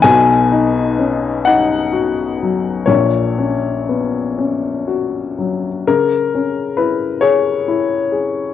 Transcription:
\new Staff \with { instrumentName = "Upright piano" } { \time 6/8 \key cis \dorian \tempo 4. = 42 << { gis''4. fis''4. | cis''4. r4. | ais'4 b'8 cis''4. | } \\ { <b,, b,>8 dis'8 cis'8 dis'8 fis'8 fis8 | <ais,, ais,>8 cis'8 b8 cis'8 fis'8 fis8 | cis8 cis'8 e'8 gis'8 e'8 gis'8 | } >> }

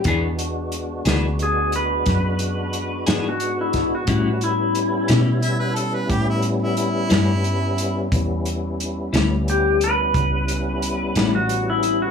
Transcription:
<<
  \new Staff \with { instrumentName = "Harmonica" } { \time 12/8 \key a \major \tempo 4. = 59 r1. | r2 e''16 b'16 a'16 b'16 g'16 e'16 r16 e'16 e'2 | r1. | }
  \new Staff \with { instrumentName = "Electric slide guitar" } { \time 12/8 \key a \major r2 gis'8 b'2~ b'16 fis'8 e'8 fis'16~ | fis'8 e'2 r2. r8 | r2 g'8 b'2~ b'16 fis'8 e'8 fis'16 | }
  \new Staff \with { instrumentName = "Clean electric guitar" } { \time 12/8 \key a \major <e b d' gis'>8 r4 <e b d' gis'>8 r2 r8 <e b d' gis'>8 r4 | <a, g cis' e'>8 r4 <a, g cis' e'>8 r2 r8 <a, g cis' e'>8 r4 | r4. <a, g cis' e'>8 r2 r8 <a, g cis' e'>8 r4 | }
  \new Staff \with { instrumentName = "Tonewheel organ" } { \time 12/8 \key a \major <gis b d' fis'>1. | <g b cis' e'>1. | <g b cis' e'>1. | }
  \new Staff \with { instrumentName = "Fingered electric bass" } { \clef bass \time 12/8 \key a \major e,4. d,4. fis,4. gis,4. | a,4. b,4. a,4. g,4. | e,4. d,4. cis,4. a,,4. | }
  \new DrumStaff \with { instrumentName = "Drums" } \drummode { \time 12/8 <hh bd>8 hh8 hh8 <hh sn>8 hh8 hh8 <hh bd sn>8 hh8 hh8 <hh sn>8 hh8 <hh bd sn>8 | <hh bd>8 hh8 hh8 <hh sn>8 hh8 hh8 <hh bd>8 hh8 hh8 <hh sn>8 hh8 hh8 | <hh bd>8 hh8 hh8 <hh sn>8 hh8 hh8 <hh bd>8 hh8 hh8 <hh sn>8 hh8 hh8 | }
>>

